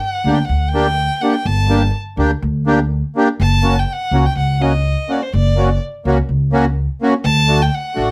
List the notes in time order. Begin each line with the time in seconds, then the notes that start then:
0.00 F#5
0.24 D2 A#3 D4 G4
0.35 G5
0.47 D2 F#5
0.68 G5
0.74 A#3 D4 G4
1.21 A#3 D4 G4 F#5
1.33 G5
1.45 G1 A5
1.69 A#3 D4 G4
2.17 D2 A#3 D4 G4
2.42 D2
2.67 A#3 D4 G4
3.16 A#3 D4 G4
3.40 F#1 A5
3.63 A#3 C#4 F#4
3.79 G5
3.92 F#5
4.11 C#2 A#3 C#4 F#4
4.26 G5
4.36 C#2 F#5
4.60 A#3 C#4 F#4 D#5
5.08 A#3 C#4 F#4 D5
5.22 C5
5.34 F#1 D5
5.56 A#3 C#4 F#4
6.05 C#2 A#3 C#4 F#4
6.29 C#2
6.52 A#3 C#4 F#4
7.02 A#3 C#4 F#4
7.24 D2 A5
7.48 A3 D4 F#4
7.62 G5
7.75 F#5
7.95 A1 A3 D4 F#4